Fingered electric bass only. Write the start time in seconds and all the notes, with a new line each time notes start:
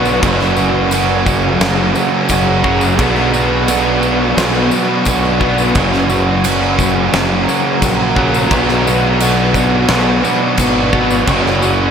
Already playing: B1
0.23 F#1
1.61 F#1
2.30 F#1
2.99 B1
4.37 B1
5.07 B1
5.75 F#1
7.14 F#1
7.82 A#1
8.51 B1
9.89 B1
10.58 G#1
11.28 F#1